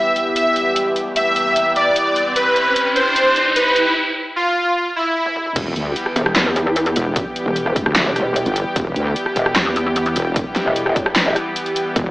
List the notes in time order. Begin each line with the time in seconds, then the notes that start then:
Already playing: E3 G3 B3 G4 E5, riser
0.16 closed hi-hat
0.36 E5, closed hi-hat
0.56 closed hi-hat
0.76 closed hi-hat
0.96 closed hi-hat
1.16 E5, closed hi-hat
1.36 closed hi-hat
1.56 closed hi-hat
1.76 D5, closed hi-hat
1.96 closed hi-hat
2.16 closed hi-hat
2.36 C4 B4, closed hi-hat
2.56 closed hi-hat
2.76 closed hi-hat
2.96 C5, closed hi-hat
3.16 closed hi-hat
3.36 closed hi-hat
3.56 B4, closed hi-hat
3.76 closed hi-hat
4.36 F4
4.96 E4
5.26 high tom
5.36 mid tom
5.46 mid tom
5.56 E1 E3 G3 B3 G4, kick, closed hi-hat, crash, sub drop
5.76 D2, closed hi-hat
5.96 closed hi-hat
6.06 cross-stick
6.16 E1, closed hi-hat
6.26 cross-stick
6.36 E2, snare, clap, closed hi-hat
6.56 closed hi-hat
6.76 closed hi-hat
6.86 closed hi-hat
6.96 E1, closed hi-hat
7.16 kick, closed hi-hat
7.36 closed hi-hat
7.46 E1
7.56 closed hi-hat
7.66 cross-stick
7.76 kick, closed hi-hat
7.86 D2, cross-stick
7.96 snare, clap, closed hi-hat
8.06 E1
8.16 cross-stick, closed hi-hat
8.36 closed hi-hat
8.46 G1, closed hi-hat
8.56 closed hi-hat
8.76 E1, kick, closed hi-hat
8.96 D2, closed hi-hat
9.16 closed hi-hat
9.26 cross-stick
9.36 E1, closed hi-hat
9.46 cross-stick
9.56 E2, snare, clap, closed hi-hat
9.76 closed hi-hat
9.96 closed hi-hat
10.06 closed hi-hat
10.16 E1, closed hi-hat
10.36 kick, closed hi-hat
10.56 snare, closed hi-hat
10.66 E1
10.76 closed hi-hat
10.86 cross-stick
10.96 kick, closed hi-hat
11.06 cross-stick
11.16 snare, clap, closed hi-hat
11.26 E1
11.36 cross-stick, closed hi-hat
11.56 closed hi-hat
11.66 closed hi-hat
11.76 closed hi-hat
11.96 E1 E4, kick, closed hi-hat